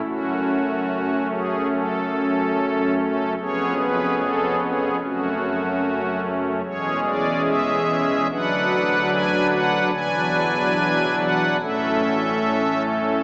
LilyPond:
<<
  \new Staff \with { instrumentName = "Pipe organ" } { \time 4/4 \key fis \minor \tempo 4 = 73 fis'4. gis'8 a'4. a'8 | cis''8 b'8 a'8 gis'8 fis'4. r8 | cis''8 d''8 e''4 fis''4 gis''8 fis''8 | gis''4. fis''8 e''4. r8 | }
  \new Staff \with { instrumentName = "Pipe organ" } { \clef bass \time 4/4 \key fis \minor <fis,, fis, a cis'>1 | <eis,, eis, b cis' gis'>2 <fis,, fis, a cis'>2 | <e,, e, gis cis' gis'>2 <d,, d, fis d' b'>2 | <e,, e, fis d' b'>2 <a,, a, a cis' a'>2 | }
>>